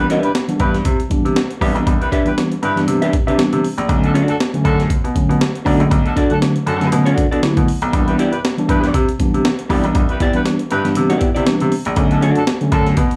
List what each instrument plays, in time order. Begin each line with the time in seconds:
Already playing: tine electric piano E3 G3 B3 D4
0.10 hollow-body jazz guitar D4 G4 B4 E5, closed hi-hat
0.23 grand piano G2, horn section E4 G4 B4, closed hi-hat
0.35 snare, closed hi-hat
0.48 tine electric piano E3 G3 B3 D4, closed hi-hat
0.60 grand piano G2, horn section E4 G4 B4, kick, closed hi-hat
0.74 snare, closed hi-hat
0.85 grand piano C3, kick, closed hi-hat
1.00 closed hi-hat
1.10 grand piano C3, tine electric piano E3 G3 B3 D4, kick, closed hi-hat
1.25 grand piano C3, closed hi-hat
1.36 snare, closed hi-hat
1.51 closed hi-hat
1.60 grand piano C2, tine electric piano E3 G3 B3 D4, hollow-body jazz guitar D4 G4 B4 E5, kick, open hi-hat
1.75 grand piano B1, closed hi-hat
1.87 grand piano C2, kick, closed hi-hat
2.01 horn section E4 G4 B4, closed hi-hat
2.12 hollow-body jazz guitar D4 G4 B4 E5, kick, closed hi-hat
2.25 grand piano G2, tine electric piano E3 G3 B3 D4, horn section E4 G4 B4, closed hi-hat
2.38 snare, closed hi-hat
2.52 closed hi-hat
2.63 grand piano G2, horn section E4 G4 B4, closed hi-hat
2.75 tine electric piano E3 G3 B3 D4, snare, closed hi-hat
2.87 grand piano C3, closed hi-hat
3.02 hollow-body jazz guitar D4 G4 B4 E5, closed hi-hat
3.13 grand piano C3, kick, closed hi-hat
3.27 grand piano C3, hollow-body jazz guitar D4 G4 B4 E5, closed hi-hat
3.38 tine electric piano E3 G3 B3 D4, snare, closed hi-hat
3.53 grand piano C3, closed hi-hat
3.64 open hi-hat
3.78 grand piano A#1, closed hi-hat
3.89 grand piano B1, tine electric piano D3 F#3 A3 C#4, kick, closed hi-hat
4.04 horn section D4 F#4 A4, closed hi-hat
4.14 hollow-body jazz guitar D4 F#4 A4 D5, closed hi-hat
4.28 grand piano F#2, horn section D4 F#4 A4, closed hi-hat
4.40 snare, closed hi-hat
4.53 tine electric piano D3 F#3 A3 C#4, closed hi-hat
4.65 grand piano F#2, horn section D4 F#4 A4, kick, closed hi-hat
4.80 snare, closed hi-hat
4.90 grand piano B2, kick, closed hi-hat
5.04 grand piano B2, closed hi-hat
5.15 tine electric piano D3 F#3 A3 C#4, kick, closed hi-hat
5.29 grand piano B2, closed hi-hat
5.41 snare, closed hi-hat
5.55 closed hi-hat
5.65 grand piano B1, tine electric piano D3 F#3 A3 C#4, hollow-body jazz guitar D4 F#4 A4 D5, kick, open hi-hat
5.80 grand piano A#1, closed hi-hat
5.91 grand piano B1, kick, closed hi-hat
6.05 horn section D4 F#4 A4, closed hi-hat
6.16 hollow-body jazz guitar D4 F#4 A4 D5, kick, closed hi-hat
6.30 grand piano F#2, tine electric piano D3 F#3 A3 D4, horn section D4 F#4 A4, closed hi-hat
6.42 snare, closed hi-hat
6.56 closed hi-hat
6.66 grand piano F#2, horn section D4 F#4 A4, closed hi-hat
6.80 tine electric piano D3 F#3 A3 C#4, snare, closed hi-hat
6.92 grand piano B2, closed hi-hat
7.05 hollow-body jazz guitar D4 F#4 A4 D5, closed hi-hat
7.18 grand piano B2, kick, closed hi-hat
7.31 grand piano B2, hollow-body jazz guitar D4 F#4 A4 D5, closed hi-hat
7.42 tine electric piano D3 F#3 A3 E4, snare, closed hi-hat
7.57 grand piano B2, kick, closed hi-hat
7.68 open hi-hat
7.82 grand piano B1, closed hi-hat
7.92 grand piano C2, tine electric piano E3 G3 B3 D4, kick, closed hi-hat
8.07 horn section E4 G4 B4, closed hi-hat
8.18 hollow-body jazz guitar B3 E4 G4 D5, closed hi-hat
8.32 grand piano G2, horn section E4 G4 B4, closed hi-hat
8.45 snare, closed hi-hat
8.57 tine electric piano E3 G3 B3 D4, closed hi-hat
8.69 grand piano G2, horn section E4 G4 B4, kick, closed hi-hat
8.84 snare, closed hi-hat
8.94 grand piano C3, kick, closed hi-hat
9.09 closed hi-hat
9.19 grand piano C3, tine electric piano E3 G3 B3 D4, kick, closed hi-hat
9.34 grand piano C3, closed hi-hat
9.45 snare, closed hi-hat
9.59 closed hi-hat
9.69 grand piano C2, tine electric piano E3 G3 B3 D4, hollow-body jazz guitar B3 E4 G4 D5, kick, open hi-hat
9.84 grand piano B1, closed hi-hat
9.95 grand piano C2, kick, closed hi-hat
10.09 horn section E4 G4 B4, closed hi-hat
10.20 hollow-body jazz guitar B3 E4 G4 D5, kick, closed hi-hat
10.33 grand piano G2, tine electric piano E3 G3 B3 D4, horn section E4 G4 B4, closed hi-hat
10.46 snare, closed hi-hat
10.59 closed hi-hat
10.71 grand piano G2, horn section E4 G4 B4, closed hi-hat
10.84 tine electric piano E3 G3 B3 D4, snare, closed hi-hat
10.95 grand piano C3, closed hi-hat
11.10 hollow-body jazz guitar B3 E4 G4 D5, closed hi-hat
11.21 grand piano C3, kick, closed hi-hat
11.35 grand piano C3, hollow-body jazz guitar B3 E4 G4 D5, closed hi-hat
11.46 tine electric piano E3 G3 B3 D4, snare, closed hi-hat
11.60 grand piano C3, closed hi-hat
11.72 open hi-hat
11.85 grand piano A#1, closed hi-hat
11.96 grand piano B1, tine electric piano D3 F#3 A3 C#4, kick, closed hi-hat
12.11 horn section D4 F#4 A4, closed hi-hat
12.21 hollow-body jazz guitar D4 F#4 A4 D5, closed hi-hat
12.35 grand piano F#2, horn section D4 F#4 A4, closed hi-hat
12.47 snare, closed hi-hat
12.61 tine electric piano D3 F#3 A3 C#4, closed hi-hat
12.72 grand piano F#2, horn section D4 F#4 A4, kick, closed hi-hat
12.86 snare, closed hi-hat
12.97 grand piano B2, kick, closed hi-hat
13.11 closed hi-hat